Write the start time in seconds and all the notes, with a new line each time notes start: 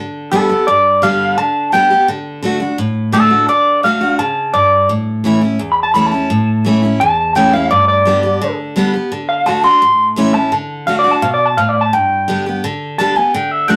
Already playing: D3
0.31 D3 G3 B3 G4 A4
0.49 B3 G4
0.67 G2 D5
1.02 D3 G3 B3 G4 F5
1.38 D3 A5
1.72 D3 G3 B3 G4 G5
1.90 B3 G4
2.08 D3
2.43 D3 A3 D4 F#4
2.60 D4 F#4
2.78 A2
3.12 D3 A3 D4 F#4 A4
3.30 D4 F#4
3.49 D3 D5
3.83 D3 A3 D4 F#4 F5
4.01 D4 F#4
4.19 C#3 A5
4.54 G2 D5
4.89 A2
5.24 E3 A3 C#4 E4
5.41 C#4 E4
5.59 E2
5.72 B5
5.83 A5
5.94 E3 A3 C#4 E4 B5
6.06 A5
6.11 C#4 E4
6.30 A2
6.65 E3 A3 C#4 E4
6.82 C#4 E4
7.00 E2 A5
7.35 E3 A3 C#4 E4 G5
7.53 C#4 E4 F5
7.71 G2 D5
7.88 D5
8.05 D3 G3 B3 G4
8.23 B3 G4
8.42 D3
8.76 D3 G3 B3 G4
8.93 B3 G4
9.12 D3
9.29 F5
9.46 D3 A3 D4 F#4 A5
9.63 D4 F#4 C6
9.82 A2
10.16 E3 A3 C#4 E4
10.34 C#4 E4 A5
10.52 D3
10.87 D3 A3 D4 F#4 F5
10.99 D5
11.04 D4 F#4
11.11 A5
11.22 B2 F5
11.34 D5
11.46 A5
11.57 A2 F5
11.69 D5
11.81 A5
11.93 G2 G5
12.28 D3 G3 B3 G4
12.46 B3 G4
12.64 D3
12.98 D3 G3 B3 G4 A5
13.16 B3 G4 G#5
13.34 D3 G5
13.51 E5
13.68 D3 A3 D4 F#4 F#5